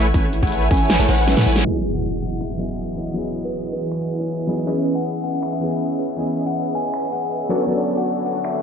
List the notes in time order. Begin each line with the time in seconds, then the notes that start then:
Already playing: A1 C#5
0.02 A4, closed hi-hat
0.14 A1 A3 C#4 E4 B4 C#5 G#5, kick, closed hi-hat
0.24 A4
0.33 E4, closed hi-hat
0.43 A1 A3 E4 G#4 B4 C#5 F#5 G#5, kick, closed hi-hat
0.47 closed hi-hat
0.52 E5, closed hi-hat
0.61 A4
0.71 A1 A3 C#4 E4 B4 C#5 G#5, kick, closed hi-hat
0.74 closed hi-hat
0.77 A4, closed hi-hat
0.90 E4, snare, closed hi-hat
0.99 A1 A3 E4 G#4 B4 C#5 A5
1.09 A1 A3 E4 B4 C#5 E5 F#5, closed hi-hat
1.18 A4, closed hi-hat
1.23 closed hi-hat
1.27 C#4, snare, closed hi-hat
1.37 A2 A3 E4 A4 B4 C#5 F#5, snare
1.46 A1 A3 E4 B4 C#5 G#5, closed hi-hat
1.50 closed hi-hat
1.52 G#4, snare, closed hi-hat
1.63 E3 F#3 B3 E4 G#4 D#5, impact
1.67 G#4
1.94 F#5, closed hi-hat
1.98 closed hi-hat
2.22 F#5, closed hi-hat
2.25 closed hi-hat
2.28 F#5, closed hi-hat
2.41 E5, finger snap, closed hi-hat
2.50 E5
2.57 F#3 B3 E4 D#5
2.62 G#4
2.97 C#5, closed hi-hat
3.01 closed hi-hat
3.04 closed hi-hat
3.14 F#3 B3 E4 D#5, closed hi-hat
3.18 G#4
3.35 closed hi-hat
3.44 B4, closed hi-hat
3.49 closed hi-hat
3.54 closed hi-hat
3.73 B4, closed hi-hat
3.76 closed hi-hat
3.79 closed hi-hat
3.92 finger snap
4.10 closed hi-hat
4.20 C#5, closed hi-hat
4.25 closed hi-hat
4.29 closed hi-hat
4.47 F#3 B3 D#4 E4 G#4, closed hi-hat
4.51 closed hi-hat
4.55 closed hi-hat
4.65 E3 B3 C#4 G#4 B4 D#5 E5
4.86 closed hi-hat
4.95 F#5, closed hi-hat
5.00 closed hi-hat
5.05 closed hi-hat
5.24 F#5, closed hi-hat
5.27 closed hi-hat
5.30 F#5, closed hi-hat
5.43 E5, finger snap
5.52 E5
5.60 E3 B3 C#4 G#4, closed hi-hat
5.71 closed hi-hat
5.76 closed hi-hat
5.80 closed hi-hat
5.99 C#5, closed hi-hat
6.02 closed hi-hat
6.05 closed hi-hat
6.16 E3 B3 C#4 G#4, closed hi-hat
6.37 closed hi-hat
6.47 F#5, closed hi-hat
6.51 closed hi-hat
6.56 closed hi-hat
6.75 G#5, closed hi-hat
6.78 closed hi-hat
6.81 closed hi-hat
6.94 finger snap, closed hi-hat
7.12 F#5, closed hi-hat
7.22 closed hi-hat
7.27 closed hi-hat
7.31 closed hi-hat
7.49 D3 F#3 B3 C#4 D4 F#4 A4 C#5 D5, closed hi-hat
7.53 closed hi-hat
7.56 closed hi-hat
7.67 F#3 B3 D4, closed hi-hat
7.71 A4
7.88 closed hi-hat
7.97 F#5, closed hi-hat
8.02 closed hi-hat
8.07 closed hi-hat
8.26 F#5, closed hi-hat
8.29 closed hi-hat
8.32 F#5, closed hi-hat
8.44 E5, finger snap, closed hi-hat
8.54 E5